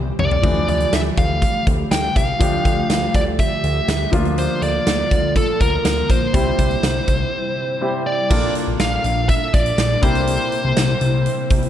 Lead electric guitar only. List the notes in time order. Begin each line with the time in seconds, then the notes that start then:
0.20 D5
0.69 D5
0.93 E5
1.18 F5
1.92 G5
2.17 F5
3.15 D5
3.40 E5
4.39 C5
4.63 D5
5.37 A4
5.61 A#4
6.11 C5
8.06 D5
8.80 F5
9.29 E5
9.54 D5
10.04 C5